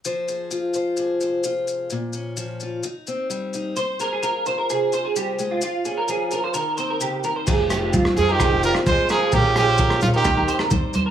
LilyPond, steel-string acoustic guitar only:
\new Staff \with { instrumentName = "Steel-string acoustic guitar" } { \time 4/4 \key f \minor \tempo 4 = 129 << { c''8 aes'4 c''8 aes'8 c''4. | r8 des'4 f'8 ees'8 c'4 ees'8 | c''8 aes'4 c''8 aes'8 c''4. | f'8 des'4 f'8 ees'8 c'4. |
g'8 f'4 g'2~ g'8 | <f des' f'>8 des'4 des'8 ees'8 c'4. | } \\ { f4 f'4 c4 f'4 | bes,4 f4 r4 g4 | r4 f'4 c4 g8 aes8 | r4 f4 ees4 des8 ees8 |
f4 c'4 c4 g8 aes8 | bes,4 f4 ees4 g4 | } >> }